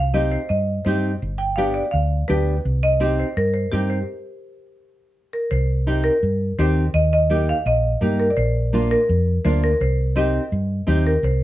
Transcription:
Already playing: C2 F5
0.14 C4 D#4 G4 D#5
0.32 C5
0.49 G2 D#5
0.85 G2 C4 D#4 G4 C5
1.22 G1
1.38 G5
1.56 B3 D4 G4 F5
1.74 D5
1.91 D2 F5
2.28 D2 B3 D4 G4 B4
2.65 C2
2.83 D#5
3.00 C4 D#4 G4
3.20 C5
3.37 G2 A#4
3.54 C5
3.72 G2 C4 D#4 G4
3.90 C5
5.33 A#4
5.51 C2 C5
5.87 C4 D#4 G4
6.04 A#4
6.23 G2
6.58 D#2 C4 D#4 G4 C5
6.94 D#2 D#5
7.13 D#5
7.30 A#3 D#4 G4
7.49 F5
7.66 A#1 D#5
8.01 G2 A#3 D#4 G4
8.20 A#4
8.30 D5
8.37 A#1 C5
8.73 A#3 D4 F4
8.91 A#4
9.09 F2
9.44 D2 A#3 D4 F4 C5
9.64 A#4
9.81 C2 C5
10.16 C4 D#4 G4 D#5
10.52 G2
10.87 D#2 C4 D#4 G4
11.07 A#4
11.23 C2 C5

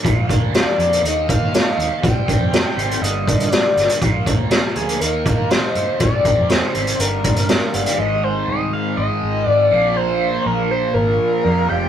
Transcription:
0.03 A#1 A#2 F3 A#3 D4 F4 A#4, kick, closed hi-hat
0.28 F3 A#3, kick, closed hi-hat
0.41 D2
0.53 A#2 F3 A#3 D5, snare, closed hi-hat
0.77 F2 F3 A#3, closed hi-hat
0.93 closed hi-hat
1.02 D#2 D#3 A#3 D#4 G4 D#5, closed hi-hat
1.28 A#3 D#4 F5, kick, closed hi-hat
1.40 D#3
1.52 D#3 A#3 D#4, snare, closed hi-hat
1.77 D#2, closed hi-hat
2.01 C2 C3 G3 C4 G4 C5 G5, kick, closed hi-hat
2.27 G3 C4, kick, closed hi-hat
2.39 F2
2.51 C3 G3 C4, snare, closed hi-hat
2.76 G#1 G3 C4, closed hi-hat
2.91 closed hi-hat
3.01 G1 G2 D3 G3 A#3 A#4 D#5, closed hi-hat
3.26 D3 G3, kick, closed hi-hat
3.39 G2, closed hi-hat
3.50 G2 D3 G3 D5, snare, closed hi-hat
3.77 G1, snare, closed hi-hat
3.89 closed hi-hat
4.00 A#1 A#2 F3 A#3 F4, kick, closed hi-hat
4.25 F3 A#3, kick, closed hi-hat
4.38 D2
4.50 A#2 F3 A#3, snare, closed hi-hat
4.75 D2 F3 A#3 G#4, closed hi-hat
4.89 closed hi-hat
5.00 D#2 D#3 A#3 D#4 G4 A#4, closed hi-hat
5.25 A#3 D#4, kick, closed hi-hat
5.38 D#3
5.50 D#3 A#3 D#4 C5, snare, closed hi-hat
5.75 G2, closed hi-hat
5.99 C2 C3 G3 C4 C5 D5, kick, closed hi-hat
6.24 G3 C4, kick, closed hi-hat
6.37 F2
6.48 C3 G3 C4 C5, snare, closed hi-hat
6.74 G#1 G3 C4, closed hi-hat
6.87 closed hi-hat
6.98 G1 G2 D3 G3 A#3 D4 G4 A#4, closed hi-hat
7.23 D3 G3, kick, closed hi-hat
7.36 G2, closed hi-hat
7.48 G2 D3 G3, snare, closed hi-hat
7.74 G1 F5, closed hi-hat
7.86 closed hi-hat
7.98 G#1 G#2 D#3 G#3 C4 D#4 F4 G#4 D#5
8.24 C5
8.48 C2 D#5
8.73 F5
8.97 G#1 D#5
9.22 G#1
9.46 G#2 D5
9.71 A#1 A#2 F3 A#3 D4 G#4 D5
9.97 C5
10.46 A#1 A#4
10.71 C5
10.94 G#1 A#4
11.44 F2 A#2 F3 A#3
11.68 F1 F2 C3 F3 G#3 C4 G5

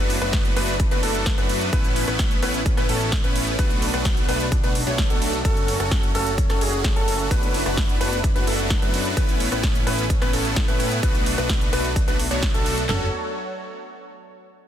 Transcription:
Already playing: F#1 F#3 A3 B3 D4 E4 F#4 B4
0.10 open hi-hat, ride
0.21 F#1 A3 B3 D4 F#4 B4, cross-stick, closed hi-hat
0.33 kick, snare, closed hi-hat, ride
0.45 closed hi-hat
0.56 F#1 A3 B3 D4 F#4 B4, open hi-hat, ride
0.68 closed hi-hat
0.80 kick, closed hi-hat, ride
0.91 F#1 A3 B3 D4 F#4 B4, closed hi-hat
1.03 F#1 A3 B3 D4 F#4 A4, open hi-hat, ride
1.15 closed hi-hat
1.26 kick, snare, closed hi-hat, ride
1.38 F#2 A3 B3 D4 F#4 B4, closed hi-hat
1.49 open hi-hat, ride
1.61 closed hi-hat
1.73 A1 A3 B3 C#4 E4 B4, kick, closed hi-hat, ride
1.84 closed hi-hat
1.96 open hi-hat, ride
2.08 A1 A3 B3 C#4 E4 B4, cross-stick, closed hi-hat
2.19 kick, snare, closed hi-hat, ride
2.31 closed hi-hat
2.42 A1 A3 B3 C#4 E4 B4, cross-stick, open hi-hat, ride
2.54 closed hi-hat
2.66 kick, closed hi-hat, ride
2.77 A1 A3 B3 C#4 E4 B4, cross-stick, snare, closed hi-hat
2.89 A1 A3 B3 C#4 E4 A4, open hi-hat, ride
3.01 closed hi-hat
3.12 kick, snare, closed hi-hat, ride
3.24 A1 A3 B3 C#4 E4 B4, closed hi-hat
3.36 open hi-hat, ride
3.47 closed hi-hat
3.59 B1 A3 B3 D4 F#4 B4, kick, closed hi-hat, ride
3.70 closed hi-hat
3.82 open hi-hat, ride
3.94 B1 A3 B3 D4 F#4 B4, cross-stick, closed hi-hat
4.05 kick, snare, closed hi-hat, ride
4.17 closed hi-hat
4.29 B1 A3 B3 D4 F#4 B4, open hi-hat, ride
4.40 closed hi-hat
4.52 kick, closed hi-hat, ride
4.63 B1 A3 B3 D4 F#4 B4, closed hi-hat
4.75 open hi-hat, ride
4.87 B1 A3 B3 D4 F#4 C#5, closed hi-hat
4.98 kick, snare, closed hi-hat, ride
5.10 B1 A3 B3 D4 F#4 A4, closed hi-hat
5.22 open hi-hat, ride
5.33 closed hi-hat
5.45 F#1 F#3 C#4 F#4 A4, kick, closed hi-hat, ride
5.57 closed hi-hat
5.68 open hi-hat, ride
5.80 F#1 C#4 F#4 A4, cross-stick, closed hi-hat
5.91 kick, snare, closed hi-hat, ride
6.03 closed hi-hat
6.15 F#1 C#4 F#4 A4, cross-stick, open hi-hat, ride
6.27 closed hi-hat
6.38 kick, closed hi-hat, ride
6.50 F#1 C#4 F#4 A4, cross-stick, snare, closed hi-hat
6.61 F#1 C#4 F#4 G#4, open hi-hat, ride
6.73 closed hi-hat
6.84 kick, snare, closed hi-hat, ride
6.96 F#1 C#4 F#4 A4, closed hi-hat
7.08 open hi-hat, ride
7.20 closed hi-hat
7.31 F#1 A3 B3 D4 E4 F#4 B4, kick, closed hi-hat, ride
7.43 closed hi-hat
7.54 open hi-hat, ride
7.66 F#1 A3 B3 D4 F#4 B4, cross-stick, closed hi-hat
7.77 kick, snare, closed hi-hat, ride
7.89 closed hi-hat
8.01 F#1 A3 B3 D4 F#4 B4, open hi-hat, ride
8.13 closed hi-hat
8.24 kick, closed hi-hat, ride
8.35 F#1 A3 B3 D4 F#4 B4, closed hi-hat
8.47 F#1 A3 B3 D4 F#4 A4, open hi-hat, ride
8.59 closed hi-hat
8.70 kick, snare, closed hi-hat, ride
8.82 F#2 A3 B3 D4 F#4 B4, closed hi-hat
8.94 open hi-hat, ride
9.05 closed hi-hat
9.17 A1 A3 B3 C#4 E4 B4, kick, closed hi-hat, ride
9.29 closed hi-hat
9.40 open hi-hat, ride
9.52 A1 A3 B3 C#4 E4 B4, cross-stick, closed hi-hat
9.63 kick, snare, closed hi-hat, ride
9.75 closed hi-hat
9.87 A1 A3 B3 C#4 E4 B4, cross-stick, open hi-hat, ride
9.99 closed hi-hat
10.10 kick, closed hi-hat, ride
10.22 A1 A3 B3 C#4 E4 B4, cross-stick, snare, closed hi-hat
10.33 A1 A3 B3 C#4 E4 A4, open hi-hat, ride
10.45 closed hi-hat
10.56 kick, snare, closed hi-hat, ride
10.68 A2 A3 B3 C#4 E4 B4, closed hi-hat
10.80 open hi-hat, ride
10.92 closed hi-hat
11.03 B1 A3 B3 D4 F#4 B4, kick, closed hi-hat, ride
11.15 closed hi-hat
11.26 open hi-hat, ride
11.38 B1 A3 B3 D4 F#4 B4, cross-stick, closed hi-hat
11.49 kick, snare, closed hi-hat, ride
11.61 closed hi-hat
11.73 B1 A3 B3 D4 F#4 B4, open hi-hat, ride
11.85 closed hi-hat
11.96 kick, closed hi-hat, ride
12.08 B1 A3 B3 D4 F#4 B4, closed hi-hat
12.19 open hi-hat, ride
12.31 B1 A3 B3 D4 F#4 C#5, closed hi-hat
12.43 kick, snare, closed hi-hat, ride
12.54 B1 A3 B3 D4 F#4 A4, closed hi-hat
12.66 open hi-hat, ride
12.78 closed hi-hat
12.89 F#1 F#3 C#4 F#4 A4 C#5, snare, clap, floor tom

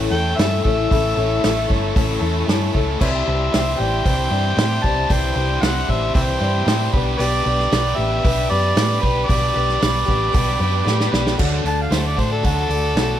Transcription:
Already playing: A2 E3 A3 C#4 E4 A4 C#5
0.11 E2 E4 A4 G5
0.15 A3 C#4
0.37 G2 A3 C#4 E4 E5, snare, open hi-hat
0.42 A4
0.64 A1 A3 C#4 E4 A4 E5, kick
0.91 A1 A2 E3 A3 C#4 E4 A4, kick, open hi-hat
1.17 A1 A3 C#4 E4 A4
1.43 A1 A3 C#4 E4 A4, snare, open hi-hat
1.68 G1 A3 C#4 E4 A4, kick
1.95 A1 A2 E3 A3 C#4 E4 A4, kick, open hi-hat
2.21 E2 A3 C#4 E4 A4
2.47 G2 A3 C#4 E4 A4, snare, open hi-hat
2.73 C#2 A3 C#4 E4 A4, kick
2.99 C2 C3 E3 G3 C4 D4 E4 G4 B4 C5 C#5 D5 E5, kick, crash
3.25 C2 G3 C4 D4 E4 G4 C5
3.52 C2 E3 G3 C4 D4 E4 G4 C5, snare, open hi-hat
3.78 A1 C4 D4 G4 G5
4.05 C2 C3 E3 G3 C4 D4 E4 G4 C5, kick, open hi-hat
4.30 G2 G3 D4 E4 G4 C5
4.34 C4
4.56 A2 E3 G3 C4 D4 E4 C5, snare, open hi-hat
4.60 G4
4.83 C2 G3 D4 E4 G4 C5 A5, kick
4.87 C4
5.09 C2 C3 E3 G3 C4 D4 E4 G4 C5 G5, kick, open hi-hat
5.35 C2 G3 C4 D4 E4 G4 C5
5.61 C2 E3 G3 C4 D4 E4 G4 C5 F#5, snare, open hi-hat
5.88 A1 C4 D4 G4 E5, kick
6.14 C2 C3 E3 G3 C4 D4 E4 G4 C5 E5 G5, kick, open hi-hat
6.39 G2 G3 D4 E4 G4 C5
6.43 C4
6.66 A2 E3 G3 C4 D4 E4 G4 C5, snare, open hi-hat
6.92 B1 B3 D4 G4 B4 D5, kick
7.18 B1 B2 G3 B3 D4 G4 B4 D5, open hi-hat
7.44 B1 B3 D4 G4 B4
7.60 snare
7.71 B1 G3 B3 D4 G4 B4, snare, open hi-hat
7.96 A1 B3 D4 G4 E5
8.23 B1 B2 G3 B3 D4 G4 B4, kick, open hi-hat
8.49 F#2 B3 D4 G4 B4 D5
8.76 A2 G3 B3 D4 G4 B4, snare, open hi-hat
9.01 B1 G4 B4, kick
9.05 B3 D4
9.26 B1 B2 G3 B3 D5, kick, open hi-hat
9.30 D4 G4 B4
9.54 B1 B3 D4 G4 B4
9.69 snare
9.80 B1 G3 B3 D4 G4 B4, snare, open hi-hat
10.06 A1 B3 D4 G4, kick
10.33 B1 B2 G3 B3 D4 G4 B4, kick, open hi-hat
10.59 F#2 B3 D4 G4 B4
10.85 A2 G3 B3 D4 G4 B4, snare
11.01 snare
11.11 B1 B3 D4 G4 B4, snare
11.27 snare
11.36 D2 D3 F#3 A3 D4 F#4 A4 D5, kick, crash
11.63 D2 A3 D4 F#4, snare, open hi-hat
11.67 A5
11.82 F5
11.90 D2 F#3 A3 D4 F#4 C5, snare, open hi-hat
12.07 D5
12.16 A2 A3 D4 F#4 C5, kick, open hi-hat
12.32 A4
12.43 D2 D3 F#3 A3 D4 F#4 A4, kick, open hi-hat
12.69 D2 A3 D4 F#4 D5, open hi-hat
12.94 B1 F#3 A3 D4 F#4, snare, open hi-hat

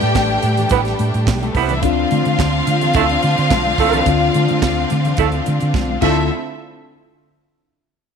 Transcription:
Already playing: G3 A3 D4 G4 B4 D5 G5
0.01 A2, closed hi-hat, high conga
0.15 A1, kick, snare, clap, muted conga
0.43 A2, closed hi-hat, high conga
0.57 closed hi-hat, low conga
0.69 A1 G3 B3 E4 B4, kick, closed hi-hat
0.85 snare, closed hi-hat
0.99 A2, closed hi-hat, muted conga, high conga
1.14 A2, closed hi-hat
1.27 B1, kick, snare, clap, muted conga, high conga
1.41 G3 G4, closed hi-hat, high conga
1.48 A3 A4
1.54 C2 G3 B3 E4 B4, kick, open hi-hat, muted conga
1.62 C4 C5
1.69 D4 D5, closed hi-hat, low conga
1.76 E4 E5
1.82 D2 D3 C4 D4 F4 F5, kick, closed hi-hat, muted conga
2.11 D3, closed hi-hat, muted conga, high conga
2.25 D3, closed hi-hat, high conga
2.39 D2, kick, snare, clap, muted conga
2.67 D3, closed hi-hat, high conga
2.81 closed hi-hat, low conga
2.94 D2 F3 A3 E4 A4, kick, closed hi-hat, muted conga
3.09 closed hi-hat
3.22 D3, closed hi-hat, muted conga, high conga
3.38 D3, closed hi-hat
3.50 B1, kick, snare, clap, muted conga, high conga
3.66 high conga
3.78 C2 F3 A3 E4 A4, kick, open hi-hat
3.93 closed hi-hat, low conga
4.06 D2 D3 C4 D4 F4, kick, closed hi-hat, muted conga
4.34 D3, closed hi-hat, muted conga, high conga
4.48 D3, closed hi-hat, high conga
4.62 D2, kick, snare, clap
4.90 D3, closed hi-hat, muted conga, high conga
5.05 closed hi-hat, low conga
5.17 D2 F3 A3 E4 A4, kick, closed hi-hat, muted conga
5.32 closed hi-hat
5.46 D3, closed hi-hat, muted conga, high conga
5.60 D3, closed hi-hat
5.74 B1, kick, snare, muted conga, high conga
5.90 high conga
6.02 D2 D3 F3 A3 C4 E4 F4 A4 E5, kick, crash, high conga

